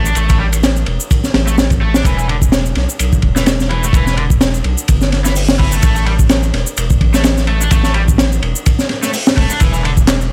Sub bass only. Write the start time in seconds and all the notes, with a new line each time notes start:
Already playing: A1
0.16 A1
0.87 E1
1.34 A1
2.05 E1
2.76 B1
3.00 B1
3.23 E1
3.93 E1
4.65 B1
4.89 G1
5.83 A1
6.54 E1
6.77 E1
7.01 A1
7.71 A1
8.43 E1
9.37 E1
9.61 E1